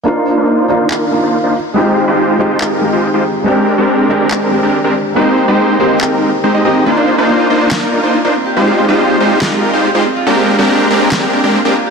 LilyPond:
<<
  \new Staff \with { instrumentName = "Supersaw synth" } { \time 4/4 \key c \minor \tempo 4 = 141 <bes d' ees' f' c''>8. <bes d' ees' f' c''>8. <bes d' ees' f' c''>8 <bes d' ees' f' bes'>8. <bes d' ees' f' c''>16 r16 <bes d' ees' f' c''>16 r8 | <aes ees' f' g' c''>8. <aes ees' f' g' c''>8. <aes ees' f' g' c''>8 <aes ees' f' g' bes'>8. <aes ees' f' g' c''>16 r16 <aes ees' f' g' c''>16 r8 | <aes c' d' g' bes'>8. <aes c' d' g' bes'>8. <aes c' d' g' bes'>8 <aes c' d' g' bes'>8. <aes c' d' g' bes'>16 r16 <aes c' d' g' bes'>16 r8 | <aes c' ees' g' c''>8. <aes c' ees' g' c''>8. <aes c' ees' g' c''>8 <aes c' ees' g' bes'>8. r16 <aes c' ees' g' c''>16 <aes c' ees' g' ees''>16 <aes c' ees' g' ees''>8 |
<bes d' ees' f' c''>8. <bes d' ees' f' c''>8. <bes d' ees' f' c''>8 <bes d' ees' f' bes'>8. <bes d' ees' f' c''>16 r16 <bes d' ees' f' c''>16 r8 | <aes ees' f' g' c''>8. <aes ees' f' g' c''>8. <aes ees' f' g' c''>8 <aes ees' f' g' bes'>8. <aes ees' f' g' c''>16 r16 <aes ees' f' g' c''>16 r8 | <aes c' d' g' bes'>8. <aes c' d' g' bes'>8. <aes c' d' g' bes'>8 r8. <aes c' d' g' bes'>16 r16 <aes c' d' g' bes'>16 r8 | }
  \new Staff \with { instrumentName = "Felt piano" } { \time 4/4 \key c \minor <bes d' ees' f'>4. <bes d' ees' f'>4 <bes d' ees' f'>16 r4 r16 | <aes c' ees' g'>4. <aes c' ees' g'>4 <aes c' ees' g'>16 r4 r16 | <aes c' d' g'>4. <aes c' d' g'>4 <aes c' d' g'>16 r4 r16 | <bes c' ees' g'>4. <bes c' ees' g'>4 r4 <bes c' ees' g'>8 |
r1 | r1 | r1 | }
  \new Staff \with { instrumentName = "Harp" } { \time 4/4 \key c \minor r1 | r1 | r1 | r1 |
bes16 d'16 bes16 ees'16 bes16 f'16 bes16 d'16 bes16 ees'16 bes16 f'16 bes16 d'16 c'16 g'16 | c'16 aes'16 c'16 f'16 c'16 g'16 c'16 aes'16 r16 f'16 c'16 g'16 c'16 aes'16 c'16 f'16 | bes16 f'16 bes16 g'16 bes16 d'16 bes16 f'16 bes16 g'16 bes16 d'16 bes16 f'16 bes16 g'16 | }
  \new DrumStaff \with { instrumentName = "Drums" } \drummode { \time 4/4 r4 r4 hc4 r4 | r4 r4 hc4 r4 | r4 r4 hc4 r4 | r4 r4 hc4 r4 |
r4 r4 <hc sn>4 r4 | r4 r4 <hc sn>4 r4 | r4 r4 <hc sn>4 r4 | }
>>